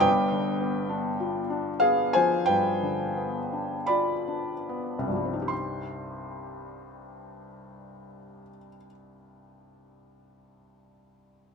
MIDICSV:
0, 0, Header, 1, 2, 480
1, 0, Start_track
1, 0, Key_signature, -3, "minor"
1, 0, Tempo, 1158301
1, 17, Time_signature, 4, 2, 24, 8
1, 498, Tempo, 1290323
1, 978, Tempo, 1401869
1, 1458, Tempo, 1608579
1, 1938, Tempo, 1534527
1, 3378, Tempo, 1492537
1, 3842, End_track
2, 0, Start_track
2, 0, Title_t, "Felt piano"
2, 0, Program_c, 0, 0
2, 0, Control_c, 0, 64, 127
2, 0, Note_on_c, 0, 43, 92
2, 1, Note_on_c, 0, 79, 125
2, 5, Note_on_c, 0, 71, 95
2, 10, Note_on_c, 0, 31, 78
2, 26, Control_c, 0, 64, 0
2, 97, Control_c, 0, 64, 127
2, 131, Note_on_c, 0, 50, 58
2, 250, Note_on_c, 0, 59, 68
2, 322, Note_off_c, 0, 50, 0
2, 370, Note_on_c, 0, 62, 72
2, 447, Note_off_c, 0, 59, 0
2, 497, Note_on_c, 0, 65, 66
2, 566, Note_off_c, 0, 62, 0
2, 609, Note_on_c, 0, 62, 64
2, 685, Note_off_c, 0, 65, 0
2, 713, Note_off_c, 0, 71, 0
2, 719, Note_on_c, 0, 77, 109
2, 725, Note_on_c, 0, 68, 87
2, 726, Note_off_c, 0, 79, 0
2, 729, Note_on_c, 0, 59, 70
2, 803, Note_off_c, 0, 62, 0
2, 842, Note_off_c, 0, 68, 0
2, 845, Note_on_c, 0, 80, 120
2, 848, Note_off_c, 0, 77, 0
2, 849, Note_on_c, 0, 72, 100
2, 855, Note_on_c, 0, 53, 70
2, 926, Note_off_c, 0, 59, 0
2, 954, Note_off_c, 0, 43, 0
2, 960, Note_off_c, 0, 31, 0
2, 965, Note_on_c, 0, 79, 110
2, 966, Note_off_c, 0, 72, 0
2, 970, Note_on_c, 0, 71, 84
2, 973, Note_off_c, 0, 80, 0
2, 976, Note_on_c, 0, 43, 75
2, 1047, Note_off_c, 0, 53, 0
2, 1093, Note_on_c, 0, 50, 66
2, 1210, Note_on_c, 0, 59, 63
2, 1282, Note_off_c, 0, 50, 0
2, 1332, Note_on_c, 0, 62, 56
2, 1406, Note_off_c, 0, 59, 0
2, 1441, Note_off_c, 0, 71, 0
2, 1448, Note_on_c, 0, 83, 100
2, 1451, Note_on_c, 0, 74, 86
2, 1452, Note_off_c, 0, 79, 0
2, 1457, Note_on_c, 0, 65, 66
2, 1527, Note_off_c, 0, 62, 0
2, 1572, Note_on_c, 0, 62, 57
2, 1646, Note_off_c, 0, 65, 0
2, 1696, Note_on_c, 0, 59, 59
2, 1772, Note_off_c, 0, 62, 0
2, 1784, Note_on_c, 0, 36, 72
2, 1806, Note_off_c, 0, 43, 0
2, 1811, Note_on_c, 0, 43, 64
2, 1821, Note_on_c, 0, 53, 44
2, 1835, Note_on_c, 0, 55, 64
2, 1862, Note_on_c, 0, 60, 53
2, 1887, Note_on_c, 0, 63, 55
2, 1891, Note_off_c, 0, 59, 0
2, 1913, Note_on_c, 0, 67, 58
2, 1923, Note_off_c, 0, 74, 0
2, 1931, Note_on_c, 0, 84, 77
2, 1934, Note_off_c, 0, 83, 0
2, 1938, Note_off_c, 0, 53, 0
2, 1947, Control_c, 0, 64, 0
2, 2028, Control_c, 0, 64, 127
2, 2847, Note_off_c, 0, 36, 0
2, 2875, Note_off_c, 0, 43, 0
2, 2900, Note_off_c, 0, 55, 0
2, 2929, Note_off_c, 0, 60, 0
2, 2955, Note_off_c, 0, 63, 0
2, 2982, Note_off_c, 0, 67, 0
2, 3001, Note_off_c, 0, 84, 0
2, 3842, End_track
0, 0, End_of_file